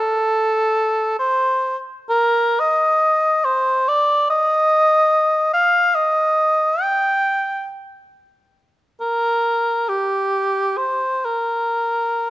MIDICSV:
0, 0, Header, 1, 2, 480
1, 0, Start_track
1, 0, Tempo, 820793
1, 693, Tempo, 896861
1, 1173, Time_signature, 4, 2, 24, 8
1, 1173, Tempo, 950872
1, 1653, Tempo, 828729
1, 3093, Tempo, 865801
1, 4533, Tempo, 887574
1, 5973, Tempo, 975610
1, 6453, Tempo, 1084991
1, 6694, End_track
2, 0, Start_track
2, 0, Title_t, "Cor anglais"
2, 0, Program_c, 0, 69
2, 0, Note_on_c, 0, 69, 100
2, 693, Note_off_c, 0, 69, 0
2, 696, Note_on_c, 0, 72, 107
2, 1004, Note_off_c, 0, 72, 0
2, 1179, Note_on_c, 0, 70, 110
2, 1432, Note_on_c, 0, 75, 110
2, 1439, Note_off_c, 0, 70, 0
2, 1893, Note_on_c, 0, 72, 110
2, 1901, Note_off_c, 0, 75, 0
2, 2146, Note_on_c, 0, 74, 108
2, 2155, Note_off_c, 0, 72, 0
2, 2381, Note_off_c, 0, 74, 0
2, 2386, Note_on_c, 0, 75, 118
2, 3083, Note_off_c, 0, 75, 0
2, 3101, Note_on_c, 0, 77, 111
2, 3331, Note_on_c, 0, 75, 106
2, 3339, Note_off_c, 0, 77, 0
2, 3811, Note_on_c, 0, 79, 99
2, 3819, Note_off_c, 0, 75, 0
2, 4290, Note_off_c, 0, 79, 0
2, 5014, Note_on_c, 0, 70, 98
2, 5489, Note_on_c, 0, 67, 88
2, 5498, Note_off_c, 0, 70, 0
2, 5969, Note_on_c, 0, 72, 86
2, 5977, Note_off_c, 0, 67, 0
2, 6203, Note_on_c, 0, 70, 75
2, 6210, Note_off_c, 0, 72, 0
2, 6694, Note_off_c, 0, 70, 0
2, 6694, End_track
0, 0, End_of_file